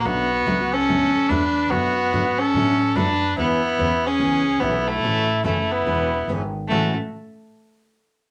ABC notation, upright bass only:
X:1
M:4/4
L:1/8
Q:"Swing" 1/4=144
K:A
V:1 name="Upright bass" clef=bass
B,,,2 C,,2 D,, z E,,2 | F,,2 G,,2 A,,2 F,,2 | E,,2 E,,2 C,,2 B,,,2 | A,,,2 F,,,2 E,,,2 G,,,2 |
A,,, z6 z |]